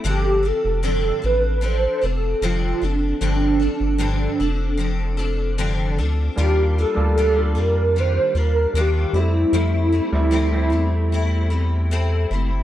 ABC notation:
X:1
M:4/4
L:1/16
Q:1/4=76
K:Gdor
V:1 name="Soft synth lead"
G2 A4 =B2 c2 A2 F2 D2- | D8- D2 z6 | G2 A4 B2 c2 B2 G2 E2- | E8- E2 z6 |]
V:2 name="Steel-string acoustic guitar"
[G,,D,F,CDA]2 [F,CDA]2 [G,,D,F,CDA]2 [F,CDA]2 [F,CDA]2 [F,CDA]2 [G,,D,F,CDA]2 [F,CDA]2 | [G,,D,F,CDA]2 [F,CDA]2 [G,,D,F,CDA]2 [F,CDA]2 [F,CDA]2 [F,CDA]2 [G,,D,F,CDA]2 [F,CDA]2 | [_E,G,DF]2 [G,DF]2 [G,DF]2 [G,DF]2 [E,G,DF]2 [G,DF]2 [E,G,DF]2 [A,C=E]2 | [F,A,CE]2 [A,CE]2 [F,A,CE]2 [A,CE]2 [A,CE]2 [A,CE]2 [A,CE]2 [A,CE]2 |]
V:3 name="Upright piano"
z16 | z16 | [G,B,DF]2 z [G,B,DF]2 [G,B,DF]6 z3 [G,A,CE]2- | [G,A,CE]2 z [G,A,CE]2 [G,A,CE]6 z4 z |]
V:4 name="Analog synth bass" clef=bass
G,,,3 F,,,3 A,,,4 F,,,2 F,,,2 _G,,,2 | G,,,3 G,,,3 F,,,8 D,,2 | _E,,3 D,,3 F,,4 E,,2 E,,2 F,,2 | F,,3 D,,3 E,,8 _G,,,2 |]